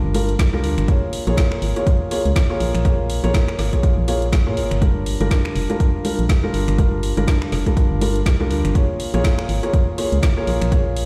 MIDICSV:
0, 0, Header, 1, 4, 480
1, 0, Start_track
1, 0, Tempo, 491803
1, 862, Time_signature, 4, 2, 24, 8
1, 10790, End_track
2, 0, Start_track
2, 0, Title_t, "Felt piano"
2, 0, Program_c, 0, 0
2, 0, Note_on_c, 0, 55, 84
2, 0, Note_on_c, 0, 62, 76
2, 0, Note_on_c, 0, 65, 76
2, 0, Note_on_c, 0, 70, 90
2, 117, Note_off_c, 0, 55, 0
2, 117, Note_off_c, 0, 62, 0
2, 118, Note_off_c, 0, 65, 0
2, 118, Note_off_c, 0, 70, 0
2, 140, Note_on_c, 0, 55, 81
2, 141, Note_on_c, 0, 62, 74
2, 142, Note_on_c, 0, 65, 74
2, 143, Note_on_c, 0, 70, 92
2, 304, Note_off_c, 0, 55, 0
2, 305, Note_off_c, 0, 62, 0
2, 305, Note_off_c, 0, 65, 0
2, 306, Note_off_c, 0, 70, 0
2, 519, Note_on_c, 0, 55, 92
2, 520, Note_on_c, 0, 62, 85
2, 521, Note_on_c, 0, 65, 84
2, 522, Note_on_c, 0, 70, 100
2, 836, Note_off_c, 0, 55, 0
2, 837, Note_off_c, 0, 62, 0
2, 838, Note_off_c, 0, 65, 0
2, 838, Note_off_c, 0, 70, 0
2, 860, Note_on_c, 0, 58, 81
2, 861, Note_on_c, 0, 65, 77
2, 862, Note_on_c, 0, 68, 74
2, 863, Note_on_c, 0, 73, 88
2, 1206, Note_off_c, 0, 58, 0
2, 1207, Note_off_c, 0, 65, 0
2, 1207, Note_off_c, 0, 68, 0
2, 1208, Note_off_c, 0, 73, 0
2, 1239, Note_on_c, 0, 58, 92
2, 1240, Note_on_c, 0, 65, 88
2, 1241, Note_on_c, 0, 68, 86
2, 1242, Note_on_c, 0, 73, 100
2, 1686, Note_off_c, 0, 58, 0
2, 1687, Note_off_c, 0, 65, 0
2, 1687, Note_off_c, 0, 68, 0
2, 1688, Note_off_c, 0, 73, 0
2, 1719, Note_on_c, 0, 58, 83
2, 1720, Note_on_c, 0, 65, 77
2, 1721, Note_on_c, 0, 68, 77
2, 1722, Note_on_c, 0, 73, 94
2, 2037, Note_off_c, 0, 58, 0
2, 2037, Note_off_c, 0, 65, 0
2, 2038, Note_off_c, 0, 68, 0
2, 2038, Note_off_c, 0, 73, 0
2, 2060, Note_on_c, 0, 58, 80
2, 2061, Note_on_c, 0, 65, 75
2, 2062, Note_on_c, 0, 68, 76
2, 2063, Note_on_c, 0, 73, 90
2, 2224, Note_off_c, 0, 58, 0
2, 2225, Note_off_c, 0, 65, 0
2, 2225, Note_off_c, 0, 68, 0
2, 2226, Note_off_c, 0, 73, 0
2, 2438, Note_on_c, 0, 58, 93
2, 2440, Note_on_c, 0, 65, 82
2, 2441, Note_on_c, 0, 68, 86
2, 2442, Note_on_c, 0, 73, 101
2, 2756, Note_off_c, 0, 58, 0
2, 2757, Note_off_c, 0, 65, 0
2, 2757, Note_off_c, 0, 68, 0
2, 2758, Note_off_c, 0, 73, 0
2, 2780, Note_on_c, 0, 58, 83
2, 2781, Note_on_c, 0, 65, 73
2, 2782, Note_on_c, 0, 68, 77
2, 2783, Note_on_c, 0, 73, 91
2, 3126, Note_off_c, 0, 58, 0
2, 3127, Note_off_c, 0, 65, 0
2, 3127, Note_off_c, 0, 68, 0
2, 3128, Note_off_c, 0, 73, 0
2, 3159, Note_on_c, 0, 58, 93
2, 3160, Note_on_c, 0, 65, 87
2, 3161, Note_on_c, 0, 68, 85
2, 3162, Note_on_c, 0, 73, 102
2, 3606, Note_off_c, 0, 58, 0
2, 3607, Note_off_c, 0, 65, 0
2, 3607, Note_off_c, 0, 68, 0
2, 3608, Note_off_c, 0, 73, 0
2, 3639, Note_on_c, 0, 58, 80
2, 3640, Note_on_c, 0, 65, 72
2, 3641, Note_on_c, 0, 68, 78
2, 3642, Note_on_c, 0, 73, 89
2, 3957, Note_off_c, 0, 58, 0
2, 3957, Note_off_c, 0, 65, 0
2, 3958, Note_off_c, 0, 68, 0
2, 3958, Note_off_c, 0, 73, 0
2, 3980, Note_on_c, 0, 58, 82
2, 3981, Note_on_c, 0, 65, 75
2, 3982, Note_on_c, 0, 68, 74
2, 3984, Note_on_c, 0, 73, 90
2, 4144, Note_off_c, 0, 58, 0
2, 4145, Note_off_c, 0, 65, 0
2, 4145, Note_off_c, 0, 68, 0
2, 4146, Note_off_c, 0, 73, 0
2, 4359, Note_on_c, 0, 58, 89
2, 4360, Note_on_c, 0, 65, 81
2, 4361, Note_on_c, 0, 68, 82
2, 4362, Note_on_c, 0, 73, 96
2, 4677, Note_off_c, 0, 58, 0
2, 4677, Note_off_c, 0, 65, 0
2, 4678, Note_off_c, 0, 68, 0
2, 4678, Note_off_c, 0, 73, 0
2, 4700, Note_on_c, 0, 55, 82
2, 4701, Note_on_c, 0, 62, 74
2, 4702, Note_on_c, 0, 65, 74
2, 4703, Note_on_c, 0, 70, 89
2, 5046, Note_off_c, 0, 55, 0
2, 5047, Note_off_c, 0, 62, 0
2, 5047, Note_off_c, 0, 65, 0
2, 5048, Note_off_c, 0, 70, 0
2, 5079, Note_on_c, 0, 55, 91
2, 5080, Note_on_c, 0, 62, 86
2, 5081, Note_on_c, 0, 65, 84
2, 5082, Note_on_c, 0, 70, 103
2, 5526, Note_off_c, 0, 55, 0
2, 5527, Note_off_c, 0, 62, 0
2, 5527, Note_off_c, 0, 65, 0
2, 5528, Note_off_c, 0, 70, 0
2, 5559, Note_on_c, 0, 55, 82
2, 5560, Note_on_c, 0, 62, 75
2, 5561, Note_on_c, 0, 65, 77
2, 5562, Note_on_c, 0, 70, 92
2, 5876, Note_off_c, 0, 55, 0
2, 5877, Note_off_c, 0, 62, 0
2, 5878, Note_off_c, 0, 65, 0
2, 5878, Note_off_c, 0, 70, 0
2, 5900, Note_on_c, 0, 55, 81
2, 5901, Note_on_c, 0, 62, 74
2, 5903, Note_on_c, 0, 65, 74
2, 5904, Note_on_c, 0, 70, 91
2, 6064, Note_off_c, 0, 55, 0
2, 6065, Note_off_c, 0, 62, 0
2, 6066, Note_off_c, 0, 65, 0
2, 6066, Note_off_c, 0, 70, 0
2, 6279, Note_on_c, 0, 55, 91
2, 6280, Note_on_c, 0, 62, 84
2, 6281, Note_on_c, 0, 65, 87
2, 6282, Note_on_c, 0, 70, 104
2, 6597, Note_off_c, 0, 55, 0
2, 6597, Note_off_c, 0, 62, 0
2, 6598, Note_off_c, 0, 65, 0
2, 6598, Note_off_c, 0, 70, 0
2, 6620, Note_on_c, 0, 55, 81
2, 6621, Note_on_c, 0, 62, 74
2, 6622, Note_on_c, 0, 65, 75
2, 6623, Note_on_c, 0, 70, 89
2, 6966, Note_off_c, 0, 55, 0
2, 6967, Note_off_c, 0, 62, 0
2, 6967, Note_off_c, 0, 65, 0
2, 6968, Note_off_c, 0, 70, 0
2, 6999, Note_on_c, 0, 55, 93
2, 7000, Note_on_c, 0, 62, 87
2, 7001, Note_on_c, 0, 65, 84
2, 7002, Note_on_c, 0, 70, 102
2, 7446, Note_off_c, 0, 55, 0
2, 7447, Note_off_c, 0, 62, 0
2, 7447, Note_off_c, 0, 65, 0
2, 7448, Note_off_c, 0, 70, 0
2, 7479, Note_on_c, 0, 55, 85
2, 7480, Note_on_c, 0, 62, 76
2, 7481, Note_on_c, 0, 65, 75
2, 7482, Note_on_c, 0, 70, 94
2, 7797, Note_off_c, 0, 55, 0
2, 7797, Note_off_c, 0, 62, 0
2, 7798, Note_off_c, 0, 65, 0
2, 7798, Note_off_c, 0, 70, 0
2, 7820, Note_on_c, 0, 55, 83
2, 7821, Note_on_c, 0, 62, 76
2, 7822, Note_on_c, 0, 65, 75
2, 7823, Note_on_c, 0, 70, 88
2, 7984, Note_off_c, 0, 55, 0
2, 7985, Note_off_c, 0, 62, 0
2, 7985, Note_off_c, 0, 65, 0
2, 7986, Note_off_c, 0, 70, 0
2, 8199, Note_on_c, 0, 55, 93
2, 8200, Note_on_c, 0, 62, 84
2, 8201, Note_on_c, 0, 65, 83
2, 8202, Note_on_c, 0, 70, 101
2, 8517, Note_off_c, 0, 55, 0
2, 8517, Note_off_c, 0, 62, 0
2, 8518, Note_off_c, 0, 65, 0
2, 8518, Note_off_c, 0, 70, 0
2, 8540, Note_on_c, 0, 58, 81
2, 8542, Note_on_c, 0, 65, 74
2, 8543, Note_on_c, 0, 68, 77
2, 8544, Note_on_c, 0, 73, 90
2, 8886, Note_off_c, 0, 58, 0
2, 8887, Note_off_c, 0, 65, 0
2, 8887, Note_off_c, 0, 68, 0
2, 8888, Note_off_c, 0, 73, 0
2, 8919, Note_on_c, 0, 58, 93
2, 8920, Note_on_c, 0, 65, 88
2, 8921, Note_on_c, 0, 68, 87
2, 8922, Note_on_c, 0, 73, 105
2, 9366, Note_off_c, 0, 58, 0
2, 9367, Note_off_c, 0, 65, 0
2, 9367, Note_off_c, 0, 68, 0
2, 9368, Note_off_c, 0, 73, 0
2, 9399, Note_on_c, 0, 58, 86
2, 9400, Note_on_c, 0, 65, 76
2, 9401, Note_on_c, 0, 68, 78
2, 9402, Note_on_c, 0, 73, 93
2, 9717, Note_off_c, 0, 58, 0
2, 9717, Note_off_c, 0, 65, 0
2, 9718, Note_off_c, 0, 68, 0
2, 9718, Note_off_c, 0, 73, 0
2, 9740, Note_on_c, 0, 58, 79
2, 9741, Note_on_c, 0, 65, 75
2, 9742, Note_on_c, 0, 68, 76
2, 9744, Note_on_c, 0, 73, 89
2, 9904, Note_off_c, 0, 58, 0
2, 9905, Note_off_c, 0, 65, 0
2, 9905, Note_off_c, 0, 68, 0
2, 9906, Note_off_c, 0, 73, 0
2, 10119, Note_on_c, 0, 58, 92
2, 10120, Note_on_c, 0, 65, 84
2, 10121, Note_on_c, 0, 68, 84
2, 10122, Note_on_c, 0, 73, 99
2, 10437, Note_off_c, 0, 58, 0
2, 10437, Note_off_c, 0, 65, 0
2, 10438, Note_off_c, 0, 68, 0
2, 10438, Note_off_c, 0, 73, 0
2, 10461, Note_on_c, 0, 58, 80
2, 10462, Note_on_c, 0, 65, 73
2, 10463, Note_on_c, 0, 68, 76
2, 10464, Note_on_c, 0, 73, 92
2, 10790, Note_off_c, 0, 58, 0
2, 10790, Note_off_c, 0, 65, 0
2, 10790, Note_off_c, 0, 68, 0
2, 10790, Note_off_c, 0, 73, 0
2, 10790, End_track
3, 0, Start_track
3, 0, Title_t, "FM bass"
3, 0, Program_c, 1, 39
3, 40, Note_on_c, 1, 31, 94
3, 357, Note_off_c, 1, 31, 0
3, 381, Note_on_c, 1, 36, 76
3, 622, Note_on_c, 1, 38, 97
3, 636, Note_off_c, 1, 36, 0
3, 739, Note_off_c, 1, 38, 0
3, 760, Note_on_c, 1, 31, 86
3, 846, Note_off_c, 1, 31, 0
3, 1240, Note_on_c, 1, 34, 98
3, 1326, Note_off_c, 1, 34, 0
3, 1582, Note_on_c, 1, 32, 95
3, 1699, Note_off_c, 1, 32, 0
3, 2200, Note_on_c, 1, 37, 93
3, 2286, Note_off_c, 1, 37, 0
3, 2542, Note_on_c, 1, 34, 79
3, 2659, Note_off_c, 1, 34, 0
3, 2680, Note_on_c, 1, 34, 100
3, 3126, Note_off_c, 1, 34, 0
3, 3160, Note_on_c, 1, 34, 96
3, 3246, Note_off_c, 1, 34, 0
3, 3502, Note_on_c, 1, 32, 91
3, 3619, Note_off_c, 1, 32, 0
3, 3880, Note_on_c, 1, 34, 95
3, 4360, Note_on_c, 1, 46, 94
3, 4375, Note_off_c, 1, 34, 0
3, 4462, Note_on_c, 1, 32, 97
3, 4476, Note_off_c, 1, 46, 0
3, 4579, Note_off_c, 1, 32, 0
3, 4600, Note_on_c, 1, 31, 79
3, 5046, Note_off_c, 1, 31, 0
3, 5080, Note_on_c, 1, 31, 97
3, 5166, Note_off_c, 1, 31, 0
3, 5421, Note_on_c, 1, 29, 95
3, 5539, Note_off_c, 1, 29, 0
3, 6040, Note_on_c, 1, 34, 92
3, 6126, Note_off_c, 1, 34, 0
3, 6382, Note_on_c, 1, 31, 79
3, 6499, Note_off_c, 1, 31, 0
3, 6520, Note_on_c, 1, 31, 103
3, 6966, Note_off_c, 1, 31, 0
3, 7000, Note_on_c, 1, 31, 96
3, 7086, Note_off_c, 1, 31, 0
3, 7341, Note_on_c, 1, 29, 93
3, 7459, Note_off_c, 1, 29, 0
3, 7720, Note_on_c, 1, 31, 94
3, 8037, Note_off_c, 1, 31, 0
3, 8061, Note_on_c, 1, 36, 77
3, 8302, Note_on_c, 1, 38, 100
3, 8317, Note_off_c, 1, 36, 0
3, 8419, Note_off_c, 1, 38, 0
3, 8440, Note_on_c, 1, 31, 85
3, 8526, Note_off_c, 1, 31, 0
3, 8920, Note_on_c, 1, 34, 97
3, 9006, Note_off_c, 1, 34, 0
3, 9262, Note_on_c, 1, 32, 93
3, 9379, Note_off_c, 1, 32, 0
3, 9880, Note_on_c, 1, 37, 92
3, 9966, Note_off_c, 1, 37, 0
3, 10222, Note_on_c, 1, 34, 82
3, 10339, Note_off_c, 1, 34, 0
3, 10360, Note_on_c, 1, 34, 101
3, 10790, Note_off_c, 1, 34, 0
3, 10790, End_track
4, 0, Start_track
4, 0, Title_t, "Drums"
4, 141, Note_on_c, 9, 46, 104
4, 239, Note_off_c, 9, 46, 0
4, 280, Note_on_c, 9, 42, 51
4, 378, Note_off_c, 9, 42, 0
4, 382, Note_on_c, 9, 36, 112
4, 382, Note_on_c, 9, 42, 65
4, 385, Note_on_c, 9, 38, 122
4, 479, Note_off_c, 9, 36, 0
4, 479, Note_off_c, 9, 42, 0
4, 483, Note_off_c, 9, 38, 0
4, 622, Note_on_c, 9, 46, 93
4, 719, Note_off_c, 9, 46, 0
4, 760, Note_on_c, 9, 26, 58
4, 760, Note_on_c, 9, 42, 58
4, 858, Note_off_c, 9, 26, 0
4, 858, Note_off_c, 9, 42, 0
4, 861, Note_on_c, 9, 42, 62
4, 862, Note_on_c, 9, 36, 118
4, 959, Note_off_c, 9, 36, 0
4, 959, Note_off_c, 9, 42, 0
4, 1102, Note_on_c, 9, 46, 108
4, 1199, Note_off_c, 9, 46, 0
4, 1241, Note_on_c, 9, 42, 48
4, 1338, Note_off_c, 9, 42, 0
4, 1342, Note_on_c, 9, 36, 118
4, 1342, Note_on_c, 9, 42, 65
4, 1345, Note_on_c, 9, 38, 123
4, 1439, Note_off_c, 9, 36, 0
4, 1440, Note_off_c, 9, 42, 0
4, 1443, Note_off_c, 9, 38, 0
4, 1480, Note_on_c, 9, 26, 72
4, 1578, Note_off_c, 9, 26, 0
4, 1582, Note_on_c, 9, 46, 92
4, 1679, Note_off_c, 9, 46, 0
4, 1721, Note_on_c, 9, 42, 48
4, 1818, Note_off_c, 9, 42, 0
4, 1822, Note_on_c, 9, 36, 119
4, 1822, Note_on_c, 9, 42, 60
4, 1919, Note_off_c, 9, 36, 0
4, 1919, Note_off_c, 9, 42, 0
4, 2062, Note_on_c, 9, 46, 108
4, 2159, Note_off_c, 9, 46, 0
4, 2200, Note_on_c, 9, 42, 50
4, 2298, Note_off_c, 9, 42, 0
4, 2302, Note_on_c, 9, 36, 115
4, 2302, Note_on_c, 9, 42, 62
4, 2305, Note_on_c, 9, 38, 120
4, 2399, Note_off_c, 9, 36, 0
4, 2400, Note_off_c, 9, 42, 0
4, 2403, Note_off_c, 9, 38, 0
4, 2542, Note_on_c, 9, 46, 93
4, 2639, Note_off_c, 9, 46, 0
4, 2680, Note_on_c, 9, 26, 58
4, 2680, Note_on_c, 9, 42, 58
4, 2778, Note_off_c, 9, 26, 0
4, 2778, Note_off_c, 9, 42, 0
4, 2782, Note_on_c, 9, 36, 113
4, 2782, Note_on_c, 9, 42, 62
4, 2879, Note_off_c, 9, 36, 0
4, 2879, Note_off_c, 9, 42, 0
4, 3022, Note_on_c, 9, 46, 109
4, 3120, Note_off_c, 9, 46, 0
4, 3160, Note_on_c, 9, 42, 50
4, 3258, Note_off_c, 9, 42, 0
4, 3262, Note_on_c, 9, 36, 115
4, 3262, Note_on_c, 9, 42, 61
4, 3265, Note_on_c, 9, 38, 115
4, 3359, Note_off_c, 9, 36, 0
4, 3359, Note_off_c, 9, 42, 0
4, 3363, Note_off_c, 9, 38, 0
4, 3401, Note_on_c, 9, 26, 72
4, 3498, Note_off_c, 9, 26, 0
4, 3502, Note_on_c, 9, 46, 90
4, 3505, Note_on_c, 9, 38, 57
4, 3599, Note_off_c, 9, 46, 0
4, 3603, Note_off_c, 9, 38, 0
4, 3640, Note_on_c, 9, 36, 61
4, 3640, Note_on_c, 9, 42, 49
4, 3738, Note_off_c, 9, 36, 0
4, 3738, Note_off_c, 9, 42, 0
4, 3742, Note_on_c, 9, 36, 116
4, 3742, Note_on_c, 9, 42, 61
4, 3839, Note_off_c, 9, 36, 0
4, 3839, Note_off_c, 9, 42, 0
4, 3982, Note_on_c, 9, 46, 107
4, 4079, Note_off_c, 9, 46, 0
4, 4120, Note_on_c, 9, 42, 48
4, 4218, Note_off_c, 9, 42, 0
4, 4222, Note_on_c, 9, 36, 115
4, 4222, Note_on_c, 9, 42, 60
4, 4225, Note_on_c, 9, 38, 113
4, 4319, Note_off_c, 9, 36, 0
4, 4319, Note_off_c, 9, 42, 0
4, 4323, Note_off_c, 9, 38, 0
4, 4461, Note_on_c, 9, 46, 94
4, 4559, Note_off_c, 9, 46, 0
4, 4600, Note_on_c, 9, 26, 60
4, 4600, Note_on_c, 9, 42, 57
4, 4698, Note_off_c, 9, 26, 0
4, 4698, Note_off_c, 9, 42, 0
4, 4702, Note_on_c, 9, 36, 114
4, 4702, Note_on_c, 9, 42, 61
4, 4799, Note_off_c, 9, 36, 0
4, 4800, Note_off_c, 9, 42, 0
4, 4942, Note_on_c, 9, 46, 101
4, 5039, Note_off_c, 9, 46, 0
4, 5080, Note_on_c, 9, 42, 48
4, 5178, Note_off_c, 9, 42, 0
4, 5182, Note_on_c, 9, 36, 111
4, 5182, Note_on_c, 9, 42, 63
4, 5185, Note_on_c, 9, 38, 110
4, 5279, Note_off_c, 9, 36, 0
4, 5279, Note_off_c, 9, 42, 0
4, 5283, Note_off_c, 9, 38, 0
4, 5320, Note_on_c, 9, 26, 74
4, 5418, Note_off_c, 9, 26, 0
4, 5422, Note_on_c, 9, 46, 87
4, 5520, Note_off_c, 9, 46, 0
4, 5561, Note_on_c, 9, 42, 47
4, 5658, Note_off_c, 9, 42, 0
4, 5662, Note_on_c, 9, 36, 110
4, 5662, Note_on_c, 9, 42, 61
4, 5759, Note_off_c, 9, 36, 0
4, 5760, Note_off_c, 9, 42, 0
4, 5902, Note_on_c, 9, 46, 102
4, 6000, Note_off_c, 9, 46, 0
4, 6041, Note_on_c, 9, 42, 48
4, 6138, Note_off_c, 9, 42, 0
4, 6142, Note_on_c, 9, 36, 115
4, 6142, Note_on_c, 9, 42, 62
4, 6145, Note_on_c, 9, 38, 109
4, 6239, Note_off_c, 9, 36, 0
4, 6240, Note_off_c, 9, 42, 0
4, 6243, Note_off_c, 9, 38, 0
4, 6382, Note_on_c, 9, 46, 89
4, 6480, Note_off_c, 9, 46, 0
4, 6521, Note_on_c, 9, 26, 64
4, 6521, Note_on_c, 9, 42, 57
4, 6618, Note_off_c, 9, 26, 0
4, 6618, Note_off_c, 9, 42, 0
4, 6622, Note_on_c, 9, 36, 108
4, 6622, Note_on_c, 9, 42, 64
4, 6719, Note_off_c, 9, 36, 0
4, 6720, Note_off_c, 9, 42, 0
4, 6862, Note_on_c, 9, 46, 97
4, 6960, Note_off_c, 9, 46, 0
4, 7001, Note_on_c, 9, 42, 51
4, 7098, Note_off_c, 9, 42, 0
4, 7101, Note_on_c, 9, 36, 109
4, 7102, Note_on_c, 9, 42, 63
4, 7105, Note_on_c, 9, 38, 112
4, 7199, Note_off_c, 9, 36, 0
4, 7200, Note_off_c, 9, 42, 0
4, 7203, Note_off_c, 9, 38, 0
4, 7241, Note_on_c, 9, 26, 78
4, 7338, Note_off_c, 9, 26, 0
4, 7342, Note_on_c, 9, 46, 86
4, 7345, Note_on_c, 9, 38, 54
4, 7439, Note_off_c, 9, 46, 0
4, 7443, Note_off_c, 9, 38, 0
4, 7480, Note_on_c, 9, 36, 57
4, 7481, Note_on_c, 9, 42, 50
4, 7578, Note_off_c, 9, 36, 0
4, 7578, Note_off_c, 9, 42, 0
4, 7581, Note_on_c, 9, 36, 111
4, 7582, Note_on_c, 9, 42, 61
4, 7679, Note_off_c, 9, 36, 0
4, 7679, Note_off_c, 9, 42, 0
4, 7822, Note_on_c, 9, 46, 102
4, 7920, Note_off_c, 9, 46, 0
4, 7960, Note_on_c, 9, 42, 50
4, 8058, Note_off_c, 9, 42, 0
4, 8061, Note_on_c, 9, 36, 111
4, 8062, Note_on_c, 9, 42, 64
4, 8065, Note_on_c, 9, 38, 113
4, 8159, Note_off_c, 9, 36, 0
4, 8159, Note_off_c, 9, 42, 0
4, 8163, Note_off_c, 9, 38, 0
4, 8302, Note_on_c, 9, 46, 90
4, 8399, Note_off_c, 9, 46, 0
4, 8440, Note_on_c, 9, 26, 65
4, 8440, Note_on_c, 9, 42, 58
4, 8538, Note_off_c, 9, 26, 0
4, 8538, Note_off_c, 9, 42, 0
4, 8541, Note_on_c, 9, 36, 109
4, 8542, Note_on_c, 9, 42, 67
4, 8639, Note_off_c, 9, 36, 0
4, 8639, Note_off_c, 9, 42, 0
4, 8782, Note_on_c, 9, 46, 96
4, 8879, Note_off_c, 9, 46, 0
4, 8920, Note_on_c, 9, 42, 51
4, 9018, Note_off_c, 9, 42, 0
4, 9021, Note_on_c, 9, 36, 109
4, 9022, Note_on_c, 9, 42, 68
4, 9025, Note_on_c, 9, 38, 114
4, 9119, Note_off_c, 9, 36, 0
4, 9120, Note_off_c, 9, 42, 0
4, 9123, Note_off_c, 9, 38, 0
4, 9161, Note_on_c, 9, 26, 77
4, 9258, Note_off_c, 9, 26, 0
4, 9262, Note_on_c, 9, 46, 87
4, 9360, Note_off_c, 9, 46, 0
4, 9401, Note_on_c, 9, 42, 51
4, 9498, Note_off_c, 9, 42, 0
4, 9502, Note_on_c, 9, 36, 110
4, 9502, Note_on_c, 9, 42, 64
4, 9599, Note_off_c, 9, 36, 0
4, 9599, Note_off_c, 9, 42, 0
4, 9742, Note_on_c, 9, 46, 102
4, 9839, Note_off_c, 9, 46, 0
4, 9881, Note_on_c, 9, 42, 51
4, 9978, Note_off_c, 9, 42, 0
4, 9981, Note_on_c, 9, 36, 107
4, 9982, Note_on_c, 9, 42, 67
4, 9985, Note_on_c, 9, 38, 114
4, 10079, Note_off_c, 9, 36, 0
4, 10080, Note_off_c, 9, 42, 0
4, 10083, Note_off_c, 9, 38, 0
4, 10222, Note_on_c, 9, 46, 84
4, 10320, Note_off_c, 9, 46, 0
4, 10361, Note_on_c, 9, 26, 67
4, 10361, Note_on_c, 9, 42, 62
4, 10458, Note_off_c, 9, 26, 0
4, 10458, Note_off_c, 9, 42, 0
4, 10461, Note_on_c, 9, 36, 109
4, 10462, Note_on_c, 9, 42, 67
4, 10559, Note_off_c, 9, 36, 0
4, 10560, Note_off_c, 9, 42, 0
4, 10702, Note_on_c, 9, 46, 100
4, 10790, Note_off_c, 9, 46, 0
4, 10790, End_track
0, 0, End_of_file